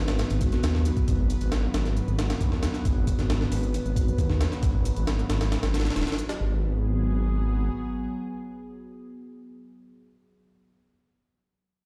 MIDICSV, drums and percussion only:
0, 0, Header, 1, 2, 480
1, 0, Start_track
1, 0, Key_signature, 5, "minor"
1, 0, Tempo, 444444
1, 1160, Time_signature, 4, 2, 24, 8
1, 12799, End_track
2, 0, Start_track
2, 0, Title_t, "Drums"
2, 84, Note_on_c, 9, 42, 29
2, 87, Note_off_c, 9, 42, 0
2, 87, Note_on_c, 9, 38, 102
2, 87, Note_on_c, 9, 42, 73
2, 195, Note_off_c, 9, 38, 0
2, 195, Note_off_c, 9, 42, 0
2, 202, Note_on_c, 9, 42, 38
2, 208, Note_off_c, 9, 42, 0
2, 208, Note_on_c, 9, 38, 96
2, 208, Note_on_c, 9, 42, 72
2, 316, Note_off_c, 9, 38, 0
2, 316, Note_off_c, 9, 42, 0
2, 324, Note_on_c, 9, 42, 26
2, 330, Note_off_c, 9, 42, 0
2, 330, Note_on_c, 9, 42, 73
2, 438, Note_off_c, 9, 42, 0
2, 441, Note_on_c, 9, 42, 67
2, 445, Note_on_c, 9, 36, 87
2, 447, Note_off_c, 9, 42, 0
2, 447, Note_on_c, 9, 42, 63
2, 553, Note_off_c, 9, 36, 0
2, 555, Note_off_c, 9, 42, 0
2, 562, Note_on_c, 9, 42, 29
2, 568, Note_on_c, 9, 38, 45
2, 670, Note_off_c, 9, 42, 0
2, 676, Note_off_c, 9, 38, 0
2, 682, Note_on_c, 9, 42, 40
2, 688, Note_off_c, 9, 42, 0
2, 688, Note_on_c, 9, 38, 113
2, 688, Note_on_c, 9, 42, 88
2, 796, Note_off_c, 9, 38, 0
2, 796, Note_off_c, 9, 42, 0
2, 808, Note_on_c, 9, 38, 50
2, 916, Note_off_c, 9, 38, 0
2, 920, Note_on_c, 9, 42, 68
2, 928, Note_off_c, 9, 42, 0
2, 928, Note_on_c, 9, 42, 62
2, 1036, Note_off_c, 9, 42, 0
2, 1044, Note_on_c, 9, 42, 28
2, 1045, Note_on_c, 9, 36, 93
2, 1152, Note_off_c, 9, 42, 0
2, 1153, Note_off_c, 9, 36, 0
2, 1164, Note_on_c, 9, 36, 104
2, 1164, Note_on_c, 9, 42, 38
2, 1166, Note_off_c, 9, 42, 0
2, 1166, Note_on_c, 9, 42, 79
2, 1272, Note_off_c, 9, 36, 0
2, 1274, Note_off_c, 9, 42, 0
2, 1403, Note_on_c, 9, 42, 66
2, 1406, Note_off_c, 9, 42, 0
2, 1406, Note_on_c, 9, 42, 63
2, 1514, Note_off_c, 9, 42, 0
2, 1521, Note_on_c, 9, 42, 29
2, 1525, Note_off_c, 9, 42, 0
2, 1525, Note_on_c, 9, 42, 41
2, 1633, Note_off_c, 9, 42, 0
2, 1639, Note_on_c, 9, 38, 108
2, 1639, Note_on_c, 9, 42, 83
2, 1642, Note_off_c, 9, 42, 0
2, 1642, Note_on_c, 9, 42, 36
2, 1747, Note_off_c, 9, 38, 0
2, 1750, Note_off_c, 9, 42, 0
2, 1880, Note_on_c, 9, 42, 63
2, 1881, Note_off_c, 9, 42, 0
2, 1881, Note_on_c, 9, 38, 101
2, 1881, Note_on_c, 9, 42, 78
2, 1989, Note_off_c, 9, 38, 0
2, 1989, Note_off_c, 9, 42, 0
2, 2002, Note_on_c, 9, 38, 43
2, 2004, Note_on_c, 9, 42, 29
2, 2110, Note_off_c, 9, 38, 0
2, 2112, Note_off_c, 9, 42, 0
2, 2123, Note_on_c, 9, 42, 38
2, 2231, Note_off_c, 9, 42, 0
2, 2247, Note_on_c, 9, 42, 26
2, 2355, Note_off_c, 9, 42, 0
2, 2361, Note_on_c, 9, 38, 97
2, 2361, Note_on_c, 9, 42, 70
2, 2469, Note_off_c, 9, 38, 0
2, 2469, Note_off_c, 9, 42, 0
2, 2483, Note_on_c, 9, 42, 28
2, 2484, Note_off_c, 9, 42, 0
2, 2484, Note_on_c, 9, 38, 96
2, 2484, Note_on_c, 9, 42, 72
2, 2592, Note_off_c, 9, 38, 0
2, 2592, Note_off_c, 9, 42, 0
2, 2599, Note_on_c, 9, 42, 60
2, 2600, Note_on_c, 9, 36, 84
2, 2603, Note_off_c, 9, 42, 0
2, 2603, Note_on_c, 9, 42, 39
2, 2708, Note_off_c, 9, 36, 0
2, 2711, Note_off_c, 9, 42, 0
2, 2720, Note_on_c, 9, 38, 44
2, 2828, Note_off_c, 9, 38, 0
2, 2836, Note_on_c, 9, 38, 95
2, 2836, Note_on_c, 9, 42, 73
2, 2843, Note_off_c, 9, 42, 0
2, 2843, Note_on_c, 9, 42, 69
2, 2944, Note_off_c, 9, 38, 0
2, 2951, Note_off_c, 9, 42, 0
2, 2959, Note_on_c, 9, 38, 42
2, 2965, Note_on_c, 9, 42, 28
2, 3067, Note_off_c, 9, 38, 0
2, 3073, Note_off_c, 9, 42, 0
2, 3080, Note_on_c, 9, 36, 100
2, 3080, Note_on_c, 9, 42, 83
2, 3084, Note_off_c, 9, 42, 0
2, 3084, Note_on_c, 9, 42, 40
2, 3188, Note_off_c, 9, 36, 0
2, 3192, Note_off_c, 9, 42, 0
2, 3318, Note_on_c, 9, 42, 64
2, 3320, Note_on_c, 9, 36, 85
2, 3323, Note_off_c, 9, 42, 0
2, 3323, Note_on_c, 9, 42, 70
2, 3428, Note_off_c, 9, 36, 0
2, 3431, Note_off_c, 9, 42, 0
2, 3443, Note_on_c, 9, 38, 49
2, 3443, Note_on_c, 9, 42, 30
2, 3551, Note_off_c, 9, 38, 0
2, 3551, Note_off_c, 9, 42, 0
2, 3562, Note_on_c, 9, 38, 109
2, 3562, Note_on_c, 9, 42, 84
2, 3670, Note_off_c, 9, 38, 0
2, 3670, Note_off_c, 9, 42, 0
2, 3681, Note_on_c, 9, 38, 47
2, 3789, Note_off_c, 9, 38, 0
2, 3799, Note_on_c, 9, 46, 79
2, 3803, Note_on_c, 9, 42, 67
2, 3907, Note_off_c, 9, 46, 0
2, 3911, Note_off_c, 9, 42, 0
2, 3922, Note_on_c, 9, 42, 30
2, 4030, Note_off_c, 9, 42, 0
2, 4042, Note_on_c, 9, 42, 82
2, 4045, Note_off_c, 9, 42, 0
2, 4045, Note_on_c, 9, 42, 37
2, 4153, Note_off_c, 9, 42, 0
2, 4165, Note_on_c, 9, 42, 26
2, 4273, Note_off_c, 9, 42, 0
2, 4280, Note_on_c, 9, 36, 89
2, 4281, Note_on_c, 9, 42, 72
2, 4286, Note_off_c, 9, 42, 0
2, 4286, Note_on_c, 9, 42, 70
2, 4388, Note_off_c, 9, 36, 0
2, 4394, Note_off_c, 9, 42, 0
2, 4409, Note_on_c, 9, 42, 29
2, 4517, Note_off_c, 9, 42, 0
2, 4519, Note_on_c, 9, 42, 59
2, 4520, Note_on_c, 9, 36, 81
2, 4526, Note_off_c, 9, 42, 0
2, 4526, Note_on_c, 9, 42, 39
2, 4628, Note_off_c, 9, 36, 0
2, 4634, Note_off_c, 9, 42, 0
2, 4638, Note_on_c, 9, 38, 45
2, 4746, Note_off_c, 9, 38, 0
2, 4759, Note_on_c, 9, 38, 96
2, 4759, Note_on_c, 9, 42, 69
2, 4763, Note_off_c, 9, 42, 0
2, 4763, Note_on_c, 9, 42, 68
2, 4867, Note_off_c, 9, 38, 0
2, 4871, Note_off_c, 9, 42, 0
2, 4881, Note_on_c, 9, 38, 44
2, 4886, Note_on_c, 9, 42, 28
2, 4989, Note_off_c, 9, 38, 0
2, 4994, Note_off_c, 9, 42, 0
2, 4997, Note_on_c, 9, 42, 83
2, 5000, Note_on_c, 9, 36, 104
2, 5005, Note_off_c, 9, 42, 0
2, 5005, Note_on_c, 9, 42, 41
2, 5108, Note_off_c, 9, 36, 0
2, 5113, Note_off_c, 9, 42, 0
2, 5241, Note_on_c, 9, 42, 64
2, 5244, Note_off_c, 9, 42, 0
2, 5244, Note_on_c, 9, 42, 71
2, 5352, Note_off_c, 9, 42, 0
2, 5361, Note_on_c, 9, 42, 39
2, 5362, Note_off_c, 9, 42, 0
2, 5362, Note_on_c, 9, 42, 31
2, 5470, Note_off_c, 9, 42, 0
2, 5478, Note_on_c, 9, 38, 114
2, 5478, Note_on_c, 9, 42, 83
2, 5484, Note_off_c, 9, 42, 0
2, 5484, Note_on_c, 9, 42, 38
2, 5586, Note_off_c, 9, 38, 0
2, 5592, Note_off_c, 9, 42, 0
2, 5607, Note_on_c, 9, 42, 28
2, 5715, Note_off_c, 9, 42, 0
2, 5720, Note_on_c, 9, 38, 98
2, 5720, Note_on_c, 9, 42, 75
2, 5722, Note_off_c, 9, 42, 0
2, 5722, Note_on_c, 9, 42, 67
2, 5828, Note_off_c, 9, 38, 0
2, 5830, Note_off_c, 9, 42, 0
2, 5841, Note_on_c, 9, 38, 96
2, 5841, Note_on_c, 9, 42, 71
2, 5846, Note_off_c, 9, 42, 0
2, 5846, Note_on_c, 9, 42, 30
2, 5949, Note_off_c, 9, 38, 0
2, 5954, Note_off_c, 9, 42, 0
2, 5961, Note_on_c, 9, 38, 93
2, 5961, Note_on_c, 9, 42, 72
2, 5963, Note_off_c, 9, 42, 0
2, 5963, Note_on_c, 9, 42, 41
2, 6069, Note_off_c, 9, 38, 0
2, 6071, Note_off_c, 9, 42, 0
2, 6080, Note_on_c, 9, 38, 95
2, 6080, Note_on_c, 9, 42, 71
2, 6084, Note_off_c, 9, 42, 0
2, 6084, Note_on_c, 9, 42, 27
2, 6188, Note_off_c, 9, 38, 0
2, 6192, Note_off_c, 9, 42, 0
2, 6200, Note_on_c, 9, 38, 78
2, 6200, Note_on_c, 9, 42, 60
2, 6202, Note_off_c, 9, 42, 0
2, 6202, Note_on_c, 9, 42, 68
2, 6261, Note_off_c, 9, 38, 0
2, 6261, Note_off_c, 9, 42, 0
2, 6261, Note_on_c, 9, 38, 79
2, 6261, Note_on_c, 9, 42, 61
2, 6320, Note_off_c, 9, 38, 0
2, 6320, Note_off_c, 9, 42, 0
2, 6320, Note_on_c, 9, 38, 78
2, 6320, Note_on_c, 9, 42, 60
2, 6326, Note_off_c, 9, 42, 0
2, 6326, Note_on_c, 9, 42, 29
2, 6377, Note_off_c, 9, 38, 0
2, 6377, Note_off_c, 9, 42, 0
2, 6377, Note_on_c, 9, 38, 81
2, 6377, Note_on_c, 9, 42, 60
2, 6438, Note_off_c, 9, 38, 0
2, 6438, Note_off_c, 9, 42, 0
2, 6438, Note_on_c, 9, 38, 83
2, 6438, Note_on_c, 9, 42, 64
2, 6441, Note_off_c, 9, 42, 0
2, 6441, Note_on_c, 9, 42, 39
2, 6496, Note_off_c, 9, 38, 0
2, 6496, Note_off_c, 9, 42, 0
2, 6496, Note_on_c, 9, 38, 84
2, 6496, Note_on_c, 9, 42, 62
2, 6555, Note_off_c, 9, 38, 0
2, 6555, Note_off_c, 9, 42, 0
2, 6555, Note_on_c, 9, 38, 80
2, 6555, Note_on_c, 9, 42, 62
2, 6563, Note_off_c, 9, 42, 0
2, 6563, Note_on_c, 9, 42, 28
2, 6613, Note_off_c, 9, 38, 0
2, 6613, Note_off_c, 9, 42, 0
2, 6613, Note_on_c, 9, 38, 82
2, 6613, Note_on_c, 9, 42, 61
2, 6677, Note_off_c, 9, 42, 0
2, 6677, Note_on_c, 9, 42, 55
2, 6681, Note_off_c, 9, 42, 0
2, 6681, Note_on_c, 9, 42, 70
2, 6721, Note_off_c, 9, 38, 0
2, 6789, Note_off_c, 9, 42, 0
2, 6796, Note_on_c, 9, 38, 96
2, 6796, Note_on_c, 9, 42, 70
2, 6805, Note_off_c, 9, 42, 0
2, 6805, Note_on_c, 9, 42, 30
2, 6904, Note_off_c, 9, 38, 0
2, 6913, Note_off_c, 9, 42, 0
2, 12799, End_track
0, 0, End_of_file